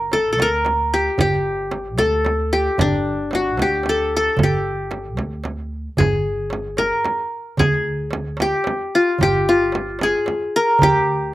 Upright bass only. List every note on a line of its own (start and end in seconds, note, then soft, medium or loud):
0.00 0.39 G1 medium
0.39 1.07 D2 medium
1.19 1.98 G1 medium
1.98 2.67 D2 medium
2.79 3.59 G1 medium
3.59 4.27 D2 medium
4.37 5.17 G1 medium
5.17 5.86 D2 medium
5.98 6.90 G1 medium
7.58 8.50 D2 medium
9.20 10.12 G1 medium
10.81 11.34 D2 medium